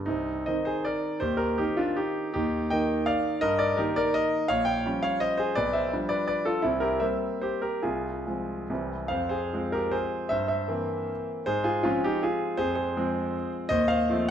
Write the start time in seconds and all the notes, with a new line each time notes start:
0.06 C2 C4 D#4
0.46 D#3 C4 D#4 C5 D#5
0.65 G#4 C5
0.85 A#4 D5
1.20 D#2 G4 C5
1.37 G4 A#4
1.58 D#3 C4 D#4 G4
1.77 D4 F4
1.96 D#4 G4
2.34 D#2 D#4 G4
2.70 D#3 A#3 D#4 D#5 G5
3.06 D5 F5
3.41 G2 A#4 D#5
3.59 A#4 D5
3.77 D#3 A#3 D#4 G4 A#4
3.96 A#4 D5
4.14 A#4 D#5
4.48 A#1 C#5 F5
4.65 C#5 G5
4.86 F3 G3 C#4
5.03 C#5 F5
5.20 C5 D#5
5.38 G#4 C5
5.55 B1 B4 D5
5.73 C5 E5
5.93 F3 G3 D4
6.09 B4 D5
6.28 B4 D5
6.45 F4 A4
6.62 C2 C4 E4
6.80 G4 A#4
7.00 G3 A#3 C4 C5 E5
7.42 G4 C5
7.62 G4 A#4
7.82 C2 F4 G#4
8.26 F3 G#3 C4
8.70 C2 E3 G3 C4
9.08 F2 C5 F5
9.29 G#4 C5
9.53 F3 G#3 C4
9.72 G4 A#4
9.92 G#4 C5
10.29 G2 C5 E5
10.48 C5 E5
10.68 E3 A#3 C4
11.46 G#2 G#4 C5
11.64 F4 G#4
11.83 F3 G#3 C4 C#4 F4
12.04 D#4 G4
12.23 F4 G#4
12.57 F2 G#4 C5
12.75 G#4 C5
12.97 F3 G#3 C4
13.69 D#2 C5 D#5
13.88 C5 F5
14.10 F3 A3 C4